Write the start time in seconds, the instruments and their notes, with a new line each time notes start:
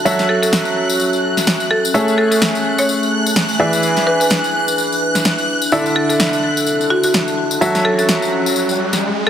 Already playing: ambient pad A4 E5 A5, string machine F#6
0.05 grand piano F#3 F#4 A4 C#5 E5, ambient pad C#4, tambourine
0.16 ambient pad F#4, snare, tambourine
0.29 marimba A4
0.42 marimba A4, tambourine
0.53 snare, tambourine
0.65 tambourine
0.89 tambourine
1.00 tambourine
1.13 tambourine
1.37 snare, tambourine
1.47 snare, tambourine
1.60 tambourine
1.71 marimba A4
1.85 tambourine
1.94 grand piano A3 G#4 A4 C#5 E5, string machine F#6, tambourine
2.03 ambient pad A3
2.08 tambourine
2.18 marimba A4
2.31 marimba A4, tambourine
2.42 snare, tambourine
2.55 tambourine
2.69 ambient pad G#5
2.78 marimba C#5, tambourine
2.89 tambourine
3.03 tambourine
3.26 tambourine
3.36 snare, tambourine
3.49 tambourine
3.60 grand piano E3 G#4 B4 D5 E5, ambient pad D4
3.65 ambient pad B4
3.73 tambourine
3.83 tambourine
3.96 snare, tambourine
4.07 marimba B4
4.20 marimba B4, tambourine
4.30 snare, tambourine
4.44 tambourine
4.68 tambourine
4.78 tambourine
4.92 tambourine
5.15 snare, tambourine
5.25 snare, tambourine
5.38 tambourine
5.62 tambourine
5.72 grand piano D3 E4 A4 D5 E5, tambourine, riser
5.86 tambourine
5.92 ambient pad A4
5.96 marimba A4
6.10 marimba A4, tambourine
6.20 snare, tambourine
6.33 ambient pad A5, tambourine
6.57 tambourine
6.66 tambourine
6.81 tambourine
6.90 marimba F#4
7.03 marimba F#4, tambourine
7.14 snare, tambourine
7.28 tambourine
7.51 tambourine
7.61 grand piano F#3 F#4 A4 C#5 E5, ambient pad C#4, tambourine
7.75 ambient pad F#4, snare, tambourine
7.85 marimba A4
7.99 marimba A4, tambourine
8.09 snare, tambourine
8.22 tambourine
8.46 tambourine
8.56 tambourine
8.69 tambourine
8.93 snare, tambourine
9.27 marimba A4